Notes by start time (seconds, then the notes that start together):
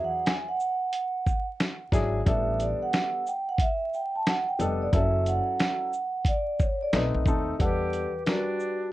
Already playing: F#3 D4 E4 G#4
0.04 F#5
0.26 G#5, snare, closed hi-hat
0.49 F#5
0.60 shaker
0.93 closed hi-hat
1.26 kick, shaker
1.60 snare, closed hi-hat
1.92 G#1 F#3 D4 E4 G#4, kick, snare, closed hi-hat, shaker
2.26 A1 G3 B3 D4 A4 E5, kick, closed hi-hat
2.60 D5, closed hi-hat, shaker
2.83 F#5
2.93 snare, closed hi-hat
3.27 G5, shaker
3.49 F#5
3.58 E5, kick, closed hi-hat
3.93 G5, shaker
4.16 A5
4.27 F#5, snare, closed hi-hat
4.49 G5
4.59 F1 G3 B3 D4 A4 D#5, closed hi-hat, shaker
4.82 D5
4.93 F#1 F#3 C#4 E4 A4 E5, kick, closed hi-hat
5.26 F#5, closed hi-hat, shaker
5.59 snare, closed hi-hat
5.93 shaker
6.25 D5, kick, closed hi-hat
6.60 kick, shaker
6.83 D5
6.93 B1 A3 C4 D#4 B4, snare, closed hi-hat
7.14 B1
7.26 D#2 A3 C4 D#4 A4, kick, shaker
7.59 E2 G3 D4 G4 A4 B4 F#5, kick, closed hi-hat
7.93 closed hi-hat, shaker
8.26 G3 D4 F#4 A#4, snare, closed hi-hat
8.35 B4
8.60 shaker